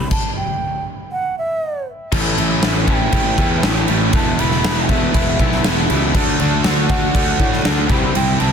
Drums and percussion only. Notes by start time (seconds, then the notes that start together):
0.11 kick, crash
2.12 kick, crash
2.38 crash
2.62 snare, crash
2.88 kick, crash
3.12 kick, crash
3.38 kick, crash
3.63 snare, crash
3.88 crash
4.13 kick, crash
4.39 crash
4.51 snare
4.64 snare, crash
4.89 kick, crash
5.14 kick, crash
5.39 kick, crash
5.52 snare
5.64 snare, crash
5.90 crash
6.15 kick, crash
6.40 crash
6.64 snare, crash
6.90 kick, crash
7.15 kick, crash
7.39 kick, crash
7.53 snare
7.65 snare, crash
7.90 kick, crash
8.15 crash
8.40 crash